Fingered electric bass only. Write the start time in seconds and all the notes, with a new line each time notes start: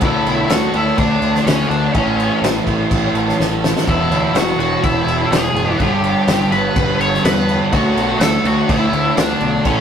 0.02 D2
0.27 B1
0.50 D2
0.74 D2
0.98 D2
1.21 D2
1.46 D2
1.70 D2
1.95 A1
2.42 A1
2.67 A1
2.91 A1
3.13 A1
3.38 A1
3.87 E1
4.09 D2
4.33 E1
4.58 E1
4.83 E1
5.06 E1
5.31 E1
5.54 F#1
5.80 G1
6.27 G1
6.51 G1
6.76 G1
6.99 G1
7.23 E2
7.73 D2
7.95 B1
8.19 D2
8.44 D2
8.69 D2
8.92 D2
9.17 D2
9.41 B1
9.65 A1